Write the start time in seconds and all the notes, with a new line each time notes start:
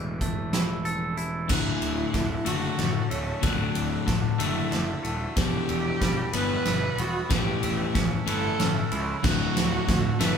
Already playing: E1 A2 E3 C#4 G4 A4 G6
0.21 A3 E6, kick, closed hi-hat
0.53 E4, snare, closed hi-hat
0.85 A4 E6, closed hi-hat
1.17 E4, closed hi-hat
1.49 D1 D2 A2 D3 E4 F#4 A4 F#5 A5 F#6, kick, snare, crash
1.82 D1 D6, ride
2.13 D1 D2 A2 D3, kick, snare, ride
2.45 F#1 D2 A2 D3 A3 F#4 E6, ride
2.77 F#1 D2 A2 D3 D6, snare, ride
3.09 D1 A3 C#4, ride
3.41 D1 D2 A2 D3 D4 F#6, kick, snare, ride
3.75 D1 D6, ride
4.06 D1 D2 A2 D3, kick, snare, ride
4.38 F#1 D2 A2 D3 A3 E4 E6, ride
4.71 F#1 D2 A2 D3 D6, snare, ride
5.03 D#1 A3, ride
5.36 E1 E2 B2 E3 G3 G4 B4 E5 B5 G6, kick, snare, ride
5.69 E1 E6, ride
6.00 E1 E2 B2 G3, kick, snare, ride
6.33 G1 E2 B2 E3 B3 B4 F#6, ride
6.65 G1 E2 B2 G3 E6, snare, ride
6.98 E1 B3 F#4, ride
7.29 E1 A2 E3 A3 G4 C#5 E5 A5 G6, kick, snare, ride
7.62 E1 E6, ride
7.95 E1 A2 E3 C#4, kick, snare, ride
8.26 G1 A2 E3 A3 E4 A4 F#6, ride
8.59 G1 A2 E3 C#4 E6, snare, ride
8.92 C#2 E4, ride
9.23 D1 D2 A2 D3 F#4 A4 D5 F#6, kick, snare, crash
9.56 D1 D6, snare, ride
9.87 D1 D2 A2 D3, kick, snare, ride
10.19 F#1 D2 A2 D3 A3 B4 E6, snare, ride